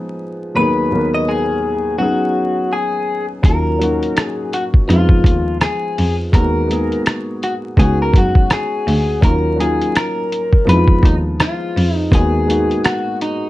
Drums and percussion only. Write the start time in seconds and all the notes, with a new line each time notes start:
3.44 kick, closed hi-hat
3.82 closed hi-hat
4.03 closed hi-hat
4.17 cross-stick, closed hi-hat
4.53 closed hi-hat
4.74 kick
4.90 closed hi-hat
5.09 kick
5.24 kick, closed hi-hat
5.61 cross-stick, closed hi-hat
5.98 open hi-hat
6.33 kick, closed hi-hat
6.71 closed hi-hat
6.92 closed hi-hat
7.06 cross-stick, closed hi-hat
7.43 closed hi-hat
7.77 kick, closed hi-hat
8.13 kick, closed hi-hat
8.35 kick
8.50 cross-stick, closed hi-hat
8.88 open hi-hat
9.22 kick, closed hi-hat
9.60 closed hi-hat
9.81 closed hi-hat
9.95 cross-stick, closed hi-hat
10.32 closed hi-hat
10.53 kick
10.69 closed hi-hat
10.88 kick
11.03 kick, closed hi-hat
11.40 cross-stick, closed hi-hat
11.77 open hi-hat
12.12 kick, closed hi-hat
12.50 closed hi-hat
12.71 closed hi-hat
12.84 cross-stick, closed hi-hat
13.21 closed hi-hat